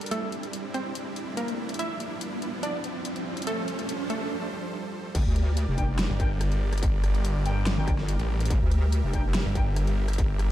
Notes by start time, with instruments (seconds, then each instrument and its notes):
Already playing: supersaw synth G3, riser
0.01 closed hi-hat
0.06 closed hi-hat
0.11 synth pluck A3 A4, supersaw synth C4 D4 E4, closed hi-hat
0.32 closed hi-hat
0.43 closed hi-hat
0.53 closed hi-hat
0.74 synth pluck C4 C5, closed hi-hat
0.95 closed hi-hat
1.16 closed hi-hat
1.37 synth pluck A#3 A#4, closed hi-hat
1.48 closed hi-hat
1.69 closed hi-hat
1.74 closed hi-hat
1.79 supersaw synth F3, synth pluck E4 E5, closed hi-hat
2.00 closed hi-hat
2.21 closed hi-hat
2.42 closed hi-hat
2.63 synth pluck D4 D5, closed hi-hat
2.84 closed hi-hat
3.05 closed hi-hat
3.16 closed hi-hat
3.37 closed hi-hat
3.42 closed hi-hat
3.47 supersaw synth G3 A4 C5, synth pluck A3 A4, closed hi-hat
3.68 closed hi-hat
3.79 closed hi-hat
3.89 closed hi-hat
4.10 synth pluck A3 A4, closed hi-hat
5.15 wobble bass G1, supersaw synth G3 G4 A#4 D5, kick, closed hi-hat, crash
5.26 wobble bass D2
5.36 closed hi-hat
5.57 closed hi-hat
5.68 wobble bass F1
5.78 brass ensemble D4 A#4 G5, kick, closed hi-hat
5.99 snare, closed hi-hat
6.10 detuned saw bass G1
6.20 brass ensemble D4 A#4 G5, kick, closed hi-hat
6.41 cross-stick, closed hi-hat
6.52 detuned saw bass G1, closed hi-hat
6.73 cross-stick, closed hi-hat
6.78 closed hi-hat
6.83 kick, closed hi-hat
7.04 cross-stick, closed hi-hat
7.15 closed hi-hat
7.25 closed hi-hat
7.36 detuned saw bass G1
7.46 brass ensemble D4 A#4 G5, closed hi-hat
7.67 snare, closed hi-hat
7.78 wobble bass G1, brass ensemble D4 A#4 G5
7.88 kick, cross-stick, closed hi-hat
7.99 snare
8.09 closed hi-hat
8.19 detuned saw bass A1, closed hi-hat
8.40 closed hi-hat
8.45 closed hi-hat
8.50 wobble bass G1, supersaw synth E5, kick, closed hi-hat
8.61 wobble bass D2
8.71 closed hi-hat
8.92 closed hi-hat
9.03 wobble bass F1
9.13 brass ensemble D4 A#4 G5, kick, closed hi-hat
9.34 snare, closed hi-hat
9.45 detuned saw bass G1
9.55 brass ensemble D4 A#4 G5, kick, closed hi-hat
9.76 cross-stick, closed hi-hat
9.87 detuned saw bass G1, closed hi-hat
10.08 cross-stick, closed hi-hat
10.13 closed hi-hat
10.18 kick, closed hi-hat
10.39 cross-stick, closed hi-hat